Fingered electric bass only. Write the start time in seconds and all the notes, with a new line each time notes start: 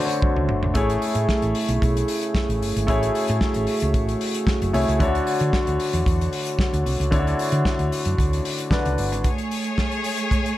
0.37 C#2
0.49 G1
0.64 G#1
0.76 A1
1.15 A2
1.42 A1
1.69 B1
1.82 B1
2.49 A1
2.61 G1
2.76 G#1
2.89 A1
3.30 A2
3.56 A1
3.82 C#2
3.94 A1
4.62 F#1
4.74 C2
4.88 C#2
5.00 D2
5.41 D3
5.68 D2
5.94 E2
6.07 E2
6.73 D2
6.86 C2
7.00 C#2
7.12 D2
7.52 D3
7.79 D2
8.06 F#2
8.19 D2
8.86 C#2
8.99 G1
9.12 G#1